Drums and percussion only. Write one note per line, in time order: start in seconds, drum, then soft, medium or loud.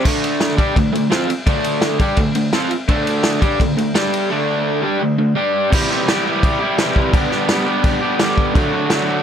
0.05 kick loud
0.05 crash loud
0.24 ride medium
0.40 snare loud
0.40 ride medium
0.58 kick loud
0.58 ride medium
0.76 kick loud
0.76 ride loud
0.95 ride medium
1.12 snare loud
1.12 ride loud
1.30 ride medium
1.47 kick loud
1.47 ride loud
1.64 ride medium
1.82 snare loud
1.82 ride loud
1.99 kick medium
1.99 ride medium
2.17 kick loud
2.17 ride loud
2.35 ride medium
2.53 snare loud
2.53 ride loud
2.71 ride medium
2.89 kick loud
2.89 ride loud
3.07 ride medium
3.23 snare loud
3.23 ride loud
3.42 kick loud
3.42 ride medium
3.60 kick medium
3.60 ride loud
3.78 ride medium
3.95 snare loud
3.95 ride loud
4.13 ride medium
5.73 kick loud
5.73 crash loud
5.73 crash medium
5.91 snare soft
6.08 snare loud
6.08 crash medium
6.43 kick loud
6.43 crash medium
6.78 snare loud
6.78 crash medium
6.96 kick medium
7.14 kick loud
7.14 crash medium
7.31 snare soft
7.49 snare loud
7.49 crash medium
7.84 kick loud
7.84 crash medium
8.19 snare loud
8.19 crash medium
8.38 kick medium
8.55 kick loud
8.55 crash medium
8.90 snare loud
8.90 crash medium